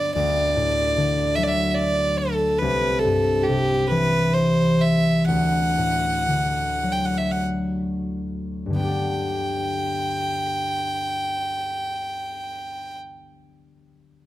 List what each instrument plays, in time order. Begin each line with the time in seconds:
Already playing: harp G2 D3 G3 B3, fiddle D5
0.14 harp D2, fiddle D5
0.56 harp A2
0.97 harp D3
1.35 harp F#3, fiddle E5
1.43 fiddle D5
1.48 fiddle E5
1.71 fiddle D5 E5
2.17 fiddle A4
2.58 harp C2, fiddle B4
2.99 fiddle A4
3.05 harp G2
3.43 fiddle G4
3.48 harp C3
3.88 harp E3, fiddle B4
4.34 fiddle C5
4.81 fiddle E5
5.27 harp D2, fiddle F#5
5.78 harp A2
6.28 harp D3
6.83 harp F#3
6.92 fiddle G5
7.05 fiddle F#5
7.18 fiddle E5
7.31 fiddle F#5
8.66 harp G2
8.70 harp D3
8.74 harp B3, fiddle G5
8.79 harp D4
8.84 harp G4
8.88 harp D5